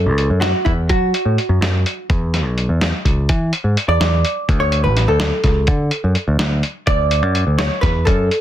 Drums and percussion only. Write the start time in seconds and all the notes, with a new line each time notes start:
0.18 closed hi-hat
0.42 snare, closed hi-hat
0.66 kick, closed hi-hat
0.89 kick, closed hi-hat
1.14 closed hi-hat
1.38 closed hi-hat
1.62 snare, closed hi-hat
1.86 closed hi-hat
2.10 kick, closed hi-hat
2.34 snare, closed hi-hat
2.58 closed hi-hat
2.81 snare, closed hi-hat
3.05 kick, closed hi-hat
3.29 kick, closed hi-hat
3.53 closed hi-hat
3.77 closed hi-hat
4.01 snare, closed hi-hat
4.25 closed hi-hat
4.49 kick, closed hi-hat
4.72 closed hi-hat
4.97 snare, closed hi-hat
5.20 snare, closed hi-hat
5.44 kick, snare, closed hi-hat
5.67 kick, closed hi-hat
5.91 closed hi-hat
6.15 closed hi-hat
6.39 snare, closed hi-hat
6.63 closed hi-hat
6.87 kick, closed hi-hat
7.11 closed hi-hat
7.35 closed hi-hat
7.59 snare, closed hi-hat
7.83 kick, snare, closed hi-hat
8.07 kick, closed hi-hat
8.31 closed hi-hat